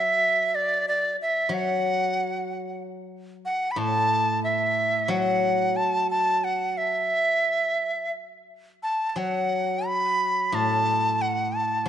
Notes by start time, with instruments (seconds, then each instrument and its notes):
Already playing: guzheng F#3, dizi E5
0.55 dizi D5
0.88 dizi D5
1.22 dizi E5
1.49 guzheng F#3
1.54 dizi F#5
3.45 dizi F#5
3.71 dizi B5
3.76 guzheng A2, dizi A5
4.44 dizi E5
5.08 guzheng F#3, dizi F#5
5.76 dizi A5
6.11 dizi A5
6.44 dizi F#5
6.78 dizi E5
8.83 dizi A5
9.09 dizi A5
9.16 guzheng F#3, dizi F#5
9.86 dizi B5
10.52 guzheng A2, dizi A5
11.22 dizi F#5
11.56 dizi A5
11.86 guzheng F#3